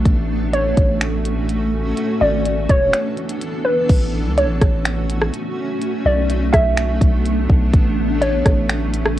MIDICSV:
0, 0, Header, 1, 5, 480
1, 0, Start_track
1, 0, Key_signature, 3, "major"
1, 0, Tempo, 480000
1, 54, Time_signature, 4, 2, 24, 8
1, 9194, End_track
2, 0, Start_track
2, 0, Title_t, "Synth pluck"
2, 0, Program_c, 0, 84
2, 535, Note_on_c, 0, 73, 77
2, 1455, Note_off_c, 0, 73, 0
2, 2213, Note_on_c, 0, 74, 79
2, 2665, Note_off_c, 0, 74, 0
2, 2697, Note_on_c, 0, 73, 74
2, 3616, Note_off_c, 0, 73, 0
2, 3647, Note_on_c, 0, 71, 75
2, 3878, Note_off_c, 0, 71, 0
2, 4376, Note_on_c, 0, 73, 85
2, 5295, Note_off_c, 0, 73, 0
2, 6059, Note_on_c, 0, 74, 84
2, 6508, Note_off_c, 0, 74, 0
2, 6527, Note_on_c, 0, 76, 88
2, 7211, Note_off_c, 0, 76, 0
2, 8215, Note_on_c, 0, 73, 83
2, 9135, Note_off_c, 0, 73, 0
2, 9194, End_track
3, 0, Start_track
3, 0, Title_t, "Ambient pad"
3, 0, Program_c, 1, 92
3, 53, Note_on_c, 1, 61, 73
3, 54, Note_on_c, 1, 57, 80
3, 54, Note_on_c, 1, 66, 87
3, 1954, Note_off_c, 1, 61, 0
3, 1955, Note_off_c, 1, 57, 0
3, 1955, Note_off_c, 1, 66, 0
3, 1974, Note_on_c, 1, 59, 76
3, 1974, Note_on_c, 1, 62, 75
3, 1974, Note_on_c, 1, 69, 91
3, 1975, Note_on_c, 1, 52, 80
3, 3875, Note_off_c, 1, 59, 0
3, 3875, Note_off_c, 1, 62, 0
3, 3875, Note_off_c, 1, 69, 0
3, 3876, Note_off_c, 1, 52, 0
3, 3894, Note_on_c, 1, 66, 93
3, 3895, Note_on_c, 1, 57, 83
3, 3895, Note_on_c, 1, 61, 73
3, 5795, Note_off_c, 1, 61, 0
3, 5795, Note_off_c, 1, 66, 0
3, 5816, Note_on_c, 1, 59, 72
3, 5816, Note_on_c, 1, 62, 93
3, 7716, Note_off_c, 1, 59, 0
3, 7716, Note_off_c, 1, 62, 0
3, 7734, Note_on_c, 1, 61, 92
3, 7735, Note_on_c, 1, 54, 86
3, 9194, Note_off_c, 1, 54, 0
3, 9194, Note_off_c, 1, 57, 0
3, 9194, Note_off_c, 1, 61, 0
3, 9194, End_track
4, 0, Start_track
4, 0, Title_t, "808-style bass"
4, 0, Program_c, 2, 38
4, 56, Note_on_c, 2, 33, 111
4, 746, Note_off_c, 2, 33, 0
4, 774, Note_on_c, 2, 33, 105
4, 1934, Note_off_c, 2, 33, 0
4, 2214, Note_on_c, 2, 32, 97
4, 2675, Note_off_c, 2, 32, 0
4, 2695, Note_on_c, 2, 28, 101
4, 2925, Note_off_c, 2, 28, 0
4, 3895, Note_on_c, 2, 33, 105
4, 4256, Note_on_c, 2, 37, 102
4, 4271, Note_off_c, 2, 33, 0
4, 4434, Note_on_c, 2, 33, 102
4, 4449, Note_off_c, 2, 37, 0
4, 4605, Note_off_c, 2, 33, 0
4, 4615, Note_on_c, 2, 33, 104
4, 5306, Note_off_c, 2, 33, 0
4, 6055, Note_on_c, 2, 35, 104
4, 6516, Note_off_c, 2, 35, 0
4, 6535, Note_on_c, 2, 35, 106
4, 6995, Note_off_c, 2, 35, 0
4, 7012, Note_on_c, 2, 35, 107
4, 7474, Note_off_c, 2, 35, 0
4, 7495, Note_on_c, 2, 35, 114
4, 7725, Note_off_c, 2, 35, 0
4, 7736, Note_on_c, 2, 33, 113
4, 8426, Note_off_c, 2, 33, 0
4, 8455, Note_on_c, 2, 33, 105
4, 9194, Note_off_c, 2, 33, 0
4, 9194, End_track
5, 0, Start_track
5, 0, Title_t, "Drums"
5, 55, Note_on_c, 9, 36, 108
5, 56, Note_on_c, 9, 42, 68
5, 155, Note_off_c, 9, 36, 0
5, 156, Note_off_c, 9, 42, 0
5, 536, Note_on_c, 9, 42, 68
5, 636, Note_off_c, 9, 42, 0
5, 775, Note_on_c, 9, 36, 92
5, 775, Note_on_c, 9, 42, 70
5, 875, Note_off_c, 9, 36, 0
5, 875, Note_off_c, 9, 42, 0
5, 1013, Note_on_c, 9, 26, 112
5, 1016, Note_on_c, 9, 42, 72
5, 1113, Note_off_c, 9, 26, 0
5, 1116, Note_off_c, 9, 42, 0
5, 1254, Note_on_c, 9, 42, 82
5, 1354, Note_off_c, 9, 42, 0
5, 1493, Note_on_c, 9, 42, 75
5, 1593, Note_off_c, 9, 42, 0
5, 1973, Note_on_c, 9, 42, 68
5, 2073, Note_off_c, 9, 42, 0
5, 2455, Note_on_c, 9, 42, 71
5, 2555, Note_off_c, 9, 42, 0
5, 2694, Note_on_c, 9, 36, 86
5, 2694, Note_on_c, 9, 42, 71
5, 2794, Note_off_c, 9, 36, 0
5, 2794, Note_off_c, 9, 42, 0
5, 2934, Note_on_c, 9, 26, 115
5, 2936, Note_on_c, 9, 42, 75
5, 3034, Note_off_c, 9, 26, 0
5, 3036, Note_off_c, 9, 42, 0
5, 3174, Note_on_c, 9, 42, 49
5, 3274, Note_off_c, 9, 42, 0
5, 3293, Note_on_c, 9, 42, 82
5, 3393, Note_off_c, 9, 42, 0
5, 3415, Note_on_c, 9, 42, 76
5, 3515, Note_off_c, 9, 42, 0
5, 3894, Note_on_c, 9, 36, 115
5, 3894, Note_on_c, 9, 42, 67
5, 3894, Note_on_c, 9, 49, 96
5, 3994, Note_off_c, 9, 36, 0
5, 3994, Note_off_c, 9, 42, 0
5, 3994, Note_off_c, 9, 49, 0
5, 4377, Note_on_c, 9, 42, 71
5, 4477, Note_off_c, 9, 42, 0
5, 4615, Note_on_c, 9, 36, 92
5, 4616, Note_on_c, 9, 37, 89
5, 4616, Note_on_c, 9, 42, 76
5, 4715, Note_off_c, 9, 36, 0
5, 4716, Note_off_c, 9, 37, 0
5, 4716, Note_off_c, 9, 42, 0
5, 4854, Note_on_c, 9, 26, 114
5, 4856, Note_on_c, 9, 42, 76
5, 4954, Note_off_c, 9, 26, 0
5, 4956, Note_off_c, 9, 42, 0
5, 5097, Note_on_c, 9, 42, 84
5, 5197, Note_off_c, 9, 42, 0
5, 5215, Note_on_c, 9, 37, 101
5, 5315, Note_off_c, 9, 37, 0
5, 5337, Note_on_c, 9, 42, 77
5, 5437, Note_off_c, 9, 42, 0
5, 5815, Note_on_c, 9, 42, 71
5, 5915, Note_off_c, 9, 42, 0
5, 6297, Note_on_c, 9, 42, 73
5, 6397, Note_off_c, 9, 42, 0
5, 6535, Note_on_c, 9, 36, 91
5, 6536, Note_on_c, 9, 37, 96
5, 6537, Note_on_c, 9, 42, 77
5, 6635, Note_off_c, 9, 36, 0
5, 6636, Note_off_c, 9, 37, 0
5, 6637, Note_off_c, 9, 42, 0
5, 6774, Note_on_c, 9, 26, 117
5, 6776, Note_on_c, 9, 42, 73
5, 6874, Note_off_c, 9, 26, 0
5, 6876, Note_off_c, 9, 42, 0
5, 7013, Note_on_c, 9, 36, 99
5, 7017, Note_on_c, 9, 42, 84
5, 7113, Note_off_c, 9, 36, 0
5, 7117, Note_off_c, 9, 42, 0
5, 7257, Note_on_c, 9, 42, 77
5, 7357, Note_off_c, 9, 42, 0
5, 7496, Note_on_c, 9, 36, 97
5, 7596, Note_off_c, 9, 36, 0
5, 7735, Note_on_c, 9, 36, 120
5, 7735, Note_on_c, 9, 42, 70
5, 7835, Note_off_c, 9, 36, 0
5, 7835, Note_off_c, 9, 42, 0
5, 8217, Note_on_c, 9, 42, 72
5, 8317, Note_off_c, 9, 42, 0
5, 8455, Note_on_c, 9, 36, 92
5, 8455, Note_on_c, 9, 37, 90
5, 8456, Note_on_c, 9, 42, 78
5, 8555, Note_off_c, 9, 36, 0
5, 8555, Note_off_c, 9, 37, 0
5, 8556, Note_off_c, 9, 42, 0
5, 8694, Note_on_c, 9, 26, 116
5, 8696, Note_on_c, 9, 42, 76
5, 8794, Note_off_c, 9, 26, 0
5, 8796, Note_off_c, 9, 42, 0
5, 8936, Note_on_c, 9, 42, 86
5, 9036, Note_off_c, 9, 42, 0
5, 9055, Note_on_c, 9, 37, 100
5, 9155, Note_off_c, 9, 37, 0
5, 9194, End_track
0, 0, End_of_file